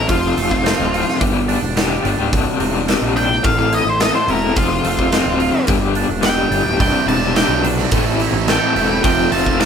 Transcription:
0.09 F1 F2 C3 F3 A3 C4 F4, kick, open hi-hat
0.37 F1 A3, open hi-hat
0.50 F3 A3 C4 F4, kick
0.64 F2 C3 F3 A3 C4 F4, snare, open hi-hat
0.79 D1
0.93 F3 A3 C4 F4, open hi-hat
1.07 muted overdriven electric guitar stroke, snare
1.20 G1 G2 D3 G3 B3 D4 G4, kick, open hi-hat
1.35 G3 B3 D4 G4
1.48 D4, open hi-hat
1.62 E1, muted overdriven electric guitar stroke
1.76 G2 D3 G3 B3 D4 G4, snare, open hi-hat
1.90 G3 B3 D4 G4
2.04 G1 G3 B3 D4 G4, open hi-hat
2.18 C#1 G3 B3 D4 G4
2.32 C1 C2 G2 C3 G3 D4, kick, open hi-hat
2.60 E1 C3, open hi-hat
2.73 C3 G3 D4
2.87 C2 G2 C3 G3 D4, snare, open hi-hat
3.02 A#1
3.15 G2 C3 G3 D4 G5, open hi-hat
3.30 muted overdriven electric guitar stroke
3.42 A1 A2 E3 A3 C4 E4 A4 F5, kick, open hi-hat
3.57 A3 C4 E4 A4 F5
3.73 E4 D#5, open hi-hat
3.85 A1, muted overdriven electric guitar stroke
3.90 C5
4.00 A2 E3 A3 C4 E4 A4 D#5, snare, open hi-hat
4.14 A3 C4 E4 A4 C5
4.28 E1 A3 C4 E4 A4 A#4, open hi-hat
4.42 A3 C4 E4 A4
4.56 F1 F2 C3 F3 A3 C4 F4, kick, open hi-hat
4.84 F1 A3, open hi-hat
4.99 F3 A3 C4 F4, kick
5.12 F2 C3 F3 A3 C4 F4, snare, open hi-hat
5.26 D1
5.40 F3 A3 C4 F4, open hi-hat
5.53 muted overdriven electric guitar stroke
5.66 G1 G2 D3 G3 B3 D4 G4, kick, open hi-hat
5.80 G3 B3 D4 G4
5.95 D4, open hi-hat
6.09 E1, muted overdriven electric guitar stroke
6.21 G2 D3 G3 B3 D4 G4, snare, open hi-hat
6.25 G5
6.35 G3 B3 D4 G4
6.50 G1 G3 B3 D4 G4, open hi-hat
6.64 D1 G3 B3 D4 G4
6.80 C1 C2 G2 C3 G3 D4 G5, kick, open hi-hat
7.06 E1 G2 C3 G3 A5, open hi-hat
7.10 D4
7.21 C3 G3 D4
7.35 C2 G2 C3 G3 D4 G5, snare, open hi-hat
7.48 B1 G3 D4
7.53 C3
7.63 G2 C3 G3 D4, muted overdriven electric guitar stroke, open hi-hat
7.77 G3 D4, muted overdriven electric guitar stroke, snare
7.82 C3
7.91 A1 A2 E3 A3 C4 E4 A4, kick, open hi-hat
8.04 A3 C4 E4 A4
8.20 A3 C4 E4 A4, open hi-hat
8.33 A1, muted overdriven electric guitar stroke
8.46 A2 E3 A3 C4 E4 A4, snare, open hi-hat
8.50 G5
8.61 A3 C4 E4 A4
8.75 E1 A3 C4 E4 A4, open hi-hat
8.89 A3 C4 E4 A4
9.03 F1 F2 C3 F3 A3 C4 F4 G5, kick, open hi-hat
9.31 F1 F3 A3 C4 F4 A5, open hi-hat
9.45 F3 A3 C4 F4, kick
9.59 F2 C3 F3 A3 C4 F4 A5, snare, open hi-hat

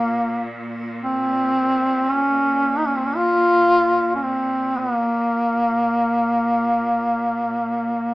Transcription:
Already playing: A#2 A#3
1.03 C4
2.09 C#4
2.78 D#4
2.87 C#4
2.97 C4
3.06 C#4
3.16 F4
4.15 C#4
4.23 C4
4.78 A#3

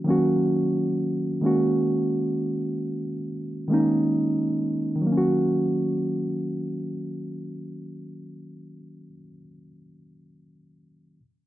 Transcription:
0.04 D#3 F#3 A#3
0.09 C#4 F#4
1.41 D#3 G#3 A#3 C#4
1.46 F#4
3.68 D#3 G#3 A#3
3.72 C#4 D#4
4.96 D#3
5.01 F#3
5.07 A#3
5.12 C#4
5.17 F#4

